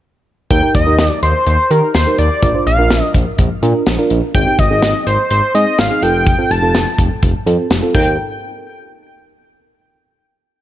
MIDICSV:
0, 0, Header, 1, 5, 480
1, 0, Start_track
1, 0, Key_signature, -3, "major"
1, 0, Tempo, 480000
1, 506, Time_signature, 4, 2, 24, 8
1, 10616, End_track
2, 0, Start_track
2, 0, Title_t, "Analog synth lead"
2, 0, Program_c, 0, 81
2, 507, Note_on_c, 0, 79, 110
2, 730, Note_off_c, 0, 79, 0
2, 748, Note_on_c, 0, 75, 104
2, 1078, Note_off_c, 0, 75, 0
2, 1078, Note_on_c, 0, 74, 104
2, 1194, Note_off_c, 0, 74, 0
2, 1227, Note_on_c, 0, 72, 90
2, 1450, Note_off_c, 0, 72, 0
2, 1468, Note_on_c, 0, 72, 94
2, 1708, Note_on_c, 0, 70, 89
2, 1723, Note_off_c, 0, 72, 0
2, 1940, Note_off_c, 0, 70, 0
2, 1946, Note_on_c, 0, 72, 93
2, 2169, Note_off_c, 0, 72, 0
2, 2187, Note_on_c, 0, 74, 94
2, 2633, Note_off_c, 0, 74, 0
2, 2667, Note_on_c, 0, 77, 91
2, 3113, Note_off_c, 0, 77, 0
2, 4346, Note_on_c, 0, 79, 95
2, 4586, Note_on_c, 0, 75, 96
2, 4601, Note_off_c, 0, 79, 0
2, 5062, Note_off_c, 0, 75, 0
2, 5068, Note_on_c, 0, 72, 82
2, 5290, Note_off_c, 0, 72, 0
2, 5307, Note_on_c, 0, 72, 94
2, 5530, Note_off_c, 0, 72, 0
2, 5549, Note_on_c, 0, 75, 92
2, 5787, Note_on_c, 0, 77, 99
2, 5802, Note_off_c, 0, 75, 0
2, 6026, Note_on_c, 0, 79, 109
2, 6041, Note_off_c, 0, 77, 0
2, 6508, Note_on_c, 0, 81, 104
2, 6523, Note_off_c, 0, 79, 0
2, 6987, Note_off_c, 0, 81, 0
2, 7946, Note_on_c, 0, 79, 84
2, 8170, Note_off_c, 0, 79, 0
2, 10616, End_track
3, 0, Start_track
3, 0, Title_t, "FM electric piano"
3, 0, Program_c, 1, 5
3, 505, Note_on_c, 1, 63, 73
3, 505, Note_on_c, 1, 67, 67
3, 505, Note_on_c, 1, 70, 77
3, 575, Note_off_c, 1, 63, 0
3, 575, Note_off_c, 1, 67, 0
3, 575, Note_off_c, 1, 70, 0
3, 625, Note_on_c, 1, 67, 66
3, 625, Note_on_c, 1, 70, 80
3, 626, Note_on_c, 1, 63, 73
3, 764, Note_off_c, 1, 63, 0
3, 764, Note_off_c, 1, 67, 0
3, 764, Note_off_c, 1, 70, 0
3, 866, Note_on_c, 1, 63, 73
3, 866, Note_on_c, 1, 67, 63
3, 866, Note_on_c, 1, 70, 81
3, 1350, Note_off_c, 1, 63, 0
3, 1350, Note_off_c, 1, 70, 0
3, 1351, Note_off_c, 1, 67, 0
3, 1706, Note_on_c, 1, 63, 69
3, 1707, Note_on_c, 1, 67, 65
3, 1707, Note_on_c, 1, 70, 81
3, 1914, Note_off_c, 1, 63, 0
3, 1914, Note_off_c, 1, 67, 0
3, 1914, Note_off_c, 1, 70, 0
3, 2068, Note_on_c, 1, 63, 68
3, 2068, Note_on_c, 1, 67, 62
3, 2068, Note_on_c, 1, 70, 74
3, 2274, Note_off_c, 1, 67, 0
3, 2275, Note_off_c, 1, 63, 0
3, 2275, Note_off_c, 1, 70, 0
3, 2426, Note_on_c, 1, 62, 72
3, 2426, Note_on_c, 1, 65, 68
3, 2426, Note_on_c, 1, 70, 82
3, 2495, Note_off_c, 1, 62, 0
3, 2495, Note_off_c, 1, 65, 0
3, 2495, Note_off_c, 1, 70, 0
3, 2548, Note_on_c, 1, 62, 72
3, 2548, Note_on_c, 1, 65, 67
3, 2548, Note_on_c, 1, 72, 80
3, 2685, Note_off_c, 1, 62, 0
3, 2685, Note_off_c, 1, 65, 0
3, 2686, Note_off_c, 1, 72, 0
3, 2787, Note_on_c, 1, 62, 70
3, 2787, Note_on_c, 1, 65, 66
3, 2787, Note_on_c, 1, 70, 80
3, 3271, Note_off_c, 1, 62, 0
3, 3271, Note_off_c, 1, 65, 0
3, 3271, Note_off_c, 1, 70, 0
3, 3627, Note_on_c, 1, 62, 86
3, 3628, Note_on_c, 1, 65, 79
3, 3628, Note_on_c, 1, 70, 96
3, 3834, Note_off_c, 1, 62, 0
3, 3834, Note_off_c, 1, 70, 0
3, 3835, Note_off_c, 1, 65, 0
3, 3986, Note_on_c, 1, 62, 85
3, 3986, Note_on_c, 1, 65, 79
3, 3986, Note_on_c, 1, 70, 93
3, 4194, Note_off_c, 1, 62, 0
3, 4194, Note_off_c, 1, 65, 0
3, 4194, Note_off_c, 1, 70, 0
3, 4346, Note_on_c, 1, 60, 76
3, 4346, Note_on_c, 1, 63, 66
3, 4346, Note_on_c, 1, 68, 80
3, 4415, Note_off_c, 1, 63, 0
3, 4416, Note_off_c, 1, 60, 0
3, 4416, Note_off_c, 1, 68, 0
3, 4465, Note_on_c, 1, 63, 69
3, 4465, Note_on_c, 1, 67, 80
3, 4466, Note_on_c, 1, 60, 73
3, 4604, Note_off_c, 1, 60, 0
3, 4604, Note_off_c, 1, 63, 0
3, 4604, Note_off_c, 1, 67, 0
3, 4705, Note_on_c, 1, 63, 66
3, 4705, Note_on_c, 1, 68, 83
3, 4706, Note_on_c, 1, 60, 73
3, 5190, Note_off_c, 1, 60, 0
3, 5190, Note_off_c, 1, 63, 0
3, 5190, Note_off_c, 1, 68, 0
3, 5546, Note_on_c, 1, 60, 74
3, 5546, Note_on_c, 1, 63, 64
3, 5546, Note_on_c, 1, 68, 82
3, 5754, Note_off_c, 1, 60, 0
3, 5754, Note_off_c, 1, 63, 0
3, 5754, Note_off_c, 1, 68, 0
3, 5906, Note_on_c, 1, 60, 67
3, 5906, Note_on_c, 1, 68, 78
3, 5907, Note_on_c, 1, 63, 64
3, 6014, Note_off_c, 1, 60, 0
3, 6026, Note_off_c, 1, 63, 0
3, 6026, Note_off_c, 1, 68, 0
3, 6026, Note_on_c, 1, 60, 75
3, 6026, Note_on_c, 1, 65, 72
3, 6026, Note_on_c, 1, 69, 86
3, 6314, Note_off_c, 1, 60, 0
3, 6314, Note_off_c, 1, 65, 0
3, 6314, Note_off_c, 1, 69, 0
3, 6385, Note_on_c, 1, 65, 66
3, 6386, Note_on_c, 1, 60, 72
3, 6386, Note_on_c, 1, 69, 82
3, 6524, Note_off_c, 1, 65, 0
3, 6525, Note_off_c, 1, 60, 0
3, 6525, Note_off_c, 1, 69, 0
3, 6624, Note_on_c, 1, 65, 66
3, 6625, Note_on_c, 1, 60, 74
3, 6625, Note_on_c, 1, 69, 78
3, 7110, Note_off_c, 1, 60, 0
3, 7110, Note_off_c, 1, 65, 0
3, 7110, Note_off_c, 1, 69, 0
3, 7465, Note_on_c, 1, 60, 87
3, 7465, Note_on_c, 1, 65, 77
3, 7465, Note_on_c, 1, 69, 93
3, 7673, Note_off_c, 1, 60, 0
3, 7673, Note_off_c, 1, 65, 0
3, 7673, Note_off_c, 1, 69, 0
3, 7825, Note_on_c, 1, 60, 84
3, 7825, Note_on_c, 1, 65, 74
3, 7825, Note_on_c, 1, 69, 91
3, 7944, Note_on_c, 1, 63, 81
3, 7944, Note_on_c, 1, 67, 74
3, 7944, Note_on_c, 1, 70, 87
3, 7946, Note_off_c, 1, 60, 0
3, 7946, Note_off_c, 1, 65, 0
3, 7946, Note_off_c, 1, 69, 0
3, 8168, Note_off_c, 1, 63, 0
3, 8168, Note_off_c, 1, 67, 0
3, 8168, Note_off_c, 1, 70, 0
3, 10616, End_track
4, 0, Start_track
4, 0, Title_t, "Analog synth bass"
4, 0, Program_c, 2, 38
4, 506, Note_on_c, 2, 39, 110
4, 614, Note_off_c, 2, 39, 0
4, 747, Note_on_c, 2, 39, 85
4, 854, Note_off_c, 2, 39, 0
4, 866, Note_on_c, 2, 39, 89
4, 974, Note_off_c, 2, 39, 0
4, 986, Note_on_c, 2, 39, 100
4, 1094, Note_off_c, 2, 39, 0
4, 1227, Note_on_c, 2, 39, 96
4, 1334, Note_off_c, 2, 39, 0
4, 1466, Note_on_c, 2, 39, 109
4, 1574, Note_off_c, 2, 39, 0
4, 1706, Note_on_c, 2, 51, 102
4, 1814, Note_off_c, 2, 51, 0
4, 1947, Note_on_c, 2, 39, 99
4, 2054, Note_off_c, 2, 39, 0
4, 2186, Note_on_c, 2, 39, 104
4, 2294, Note_off_c, 2, 39, 0
4, 2426, Note_on_c, 2, 34, 97
4, 2534, Note_off_c, 2, 34, 0
4, 2666, Note_on_c, 2, 34, 88
4, 2774, Note_off_c, 2, 34, 0
4, 2786, Note_on_c, 2, 34, 105
4, 2894, Note_off_c, 2, 34, 0
4, 2906, Note_on_c, 2, 34, 111
4, 3014, Note_off_c, 2, 34, 0
4, 3144, Note_on_c, 2, 34, 94
4, 3253, Note_off_c, 2, 34, 0
4, 3387, Note_on_c, 2, 34, 98
4, 3494, Note_off_c, 2, 34, 0
4, 3625, Note_on_c, 2, 46, 101
4, 3734, Note_off_c, 2, 46, 0
4, 3866, Note_on_c, 2, 34, 90
4, 3974, Note_off_c, 2, 34, 0
4, 4106, Note_on_c, 2, 34, 100
4, 4214, Note_off_c, 2, 34, 0
4, 4346, Note_on_c, 2, 32, 104
4, 4454, Note_off_c, 2, 32, 0
4, 4587, Note_on_c, 2, 32, 95
4, 4694, Note_off_c, 2, 32, 0
4, 4706, Note_on_c, 2, 32, 93
4, 4814, Note_off_c, 2, 32, 0
4, 4827, Note_on_c, 2, 32, 101
4, 4934, Note_off_c, 2, 32, 0
4, 5066, Note_on_c, 2, 32, 99
4, 5174, Note_off_c, 2, 32, 0
4, 5306, Note_on_c, 2, 32, 97
4, 5414, Note_off_c, 2, 32, 0
4, 5546, Note_on_c, 2, 44, 100
4, 5654, Note_off_c, 2, 44, 0
4, 5786, Note_on_c, 2, 32, 97
4, 5894, Note_off_c, 2, 32, 0
4, 6026, Note_on_c, 2, 29, 99
4, 6349, Note_off_c, 2, 29, 0
4, 6505, Note_on_c, 2, 29, 98
4, 6613, Note_off_c, 2, 29, 0
4, 6624, Note_on_c, 2, 29, 91
4, 6732, Note_off_c, 2, 29, 0
4, 6744, Note_on_c, 2, 29, 98
4, 6853, Note_off_c, 2, 29, 0
4, 6985, Note_on_c, 2, 29, 95
4, 7093, Note_off_c, 2, 29, 0
4, 7227, Note_on_c, 2, 29, 109
4, 7334, Note_off_c, 2, 29, 0
4, 7464, Note_on_c, 2, 41, 98
4, 7573, Note_off_c, 2, 41, 0
4, 7704, Note_on_c, 2, 29, 95
4, 7813, Note_off_c, 2, 29, 0
4, 7946, Note_on_c, 2, 39, 95
4, 8169, Note_off_c, 2, 39, 0
4, 10616, End_track
5, 0, Start_track
5, 0, Title_t, "Drums"
5, 506, Note_on_c, 9, 36, 103
5, 506, Note_on_c, 9, 42, 68
5, 606, Note_off_c, 9, 36, 0
5, 606, Note_off_c, 9, 42, 0
5, 747, Note_on_c, 9, 36, 86
5, 750, Note_on_c, 9, 42, 73
5, 847, Note_off_c, 9, 36, 0
5, 850, Note_off_c, 9, 42, 0
5, 985, Note_on_c, 9, 42, 70
5, 986, Note_on_c, 9, 38, 106
5, 1085, Note_off_c, 9, 42, 0
5, 1086, Note_off_c, 9, 38, 0
5, 1228, Note_on_c, 9, 42, 85
5, 1328, Note_off_c, 9, 42, 0
5, 1465, Note_on_c, 9, 42, 73
5, 1565, Note_off_c, 9, 42, 0
5, 1708, Note_on_c, 9, 42, 70
5, 1808, Note_off_c, 9, 42, 0
5, 1945, Note_on_c, 9, 42, 73
5, 1947, Note_on_c, 9, 38, 109
5, 2045, Note_off_c, 9, 42, 0
5, 2047, Note_off_c, 9, 38, 0
5, 2185, Note_on_c, 9, 42, 71
5, 2285, Note_off_c, 9, 42, 0
5, 2425, Note_on_c, 9, 42, 69
5, 2426, Note_on_c, 9, 36, 102
5, 2525, Note_off_c, 9, 42, 0
5, 2526, Note_off_c, 9, 36, 0
5, 2668, Note_on_c, 9, 42, 73
5, 2768, Note_off_c, 9, 42, 0
5, 2904, Note_on_c, 9, 38, 107
5, 2904, Note_on_c, 9, 42, 72
5, 3004, Note_off_c, 9, 38, 0
5, 3004, Note_off_c, 9, 42, 0
5, 3144, Note_on_c, 9, 36, 84
5, 3147, Note_on_c, 9, 42, 84
5, 3244, Note_off_c, 9, 36, 0
5, 3247, Note_off_c, 9, 42, 0
5, 3384, Note_on_c, 9, 42, 72
5, 3387, Note_on_c, 9, 36, 84
5, 3484, Note_off_c, 9, 42, 0
5, 3487, Note_off_c, 9, 36, 0
5, 3628, Note_on_c, 9, 42, 73
5, 3728, Note_off_c, 9, 42, 0
5, 3864, Note_on_c, 9, 42, 73
5, 3866, Note_on_c, 9, 38, 111
5, 3964, Note_off_c, 9, 42, 0
5, 3966, Note_off_c, 9, 38, 0
5, 4103, Note_on_c, 9, 42, 74
5, 4203, Note_off_c, 9, 42, 0
5, 4345, Note_on_c, 9, 42, 69
5, 4346, Note_on_c, 9, 36, 106
5, 4445, Note_off_c, 9, 42, 0
5, 4446, Note_off_c, 9, 36, 0
5, 4587, Note_on_c, 9, 36, 88
5, 4588, Note_on_c, 9, 42, 73
5, 4687, Note_off_c, 9, 36, 0
5, 4688, Note_off_c, 9, 42, 0
5, 4824, Note_on_c, 9, 38, 103
5, 4824, Note_on_c, 9, 42, 73
5, 4924, Note_off_c, 9, 38, 0
5, 4924, Note_off_c, 9, 42, 0
5, 5067, Note_on_c, 9, 42, 85
5, 5167, Note_off_c, 9, 42, 0
5, 5305, Note_on_c, 9, 42, 73
5, 5405, Note_off_c, 9, 42, 0
5, 5549, Note_on_c, 9, 42, 70
5, 5649, Note_off_c, 9, 42, 0
5, 5785, Note_on_c, 9, 42, 74
5, 5788, Note_on_c, 9, 38, 109
5, 5885, Note_off_c, 9, 42, 0
5, 5887, Note_off_c, 9, 38, 0
5, 6025, Note_on_c, 9, 42, 74
5, 6125, Note_off_c, 9, 42, 0
5, 6266, Note_on_c, 9, 36, 107
5, 6266, Note_on_c, 9, 42, 67
5, 6366, Note_off_c, 9, 36, 0
5, 6366, Note_off_c, 9, 42, 0
5, 6510, Note_on_c, 9, 42, 73
5, 6610, Note_off_c, 9, 42, 0
5, 6746, Note_on_c, 9, 38, 107
5, 6746, Note_on_c, 9, 42, 74
5, 6846, Note_off_c, 9, 38, 0
5, 6846, Note_off_c, 9, 42, 0
5, 6985, Note_on_c, 9, 36, 82
5, 6988, Note_on_c, 9, 42, 83
5, 7085, Note_off_c, 9, 36, 0
5, 7088, Note_off_c, 9, 42, 0
5, 7225, Note_on_c, 9, 42, 75
5, 7227, Note_on_c, 9, 36, 81
5, 7325, Note_off_c, 9, 42, 0
5, 7327, Note_off_c, 9, 36, 0
5, 7468, Note_on_c, 9, 42, 73
5, 7568, Note_off_c, 9, 42, 0
5, 7705, Note_on_c, 9, 42, 74
5, 7708, Note_on_c, 9, 38, 109
5, 7805, Note_off_c, 9, 42, 0
5, 7808, Note_off_c, 9, 38, 0
5, 7946, Note_on_c, 9, 36, 103
5, 7947, Note_on_c, 9, 49, 81
5, 8046, Note_off_c, 9, 36, 0
5, 8047, Note_off_c, 9, 49, 0
5, 10616, End_track
0, 0, End_of_file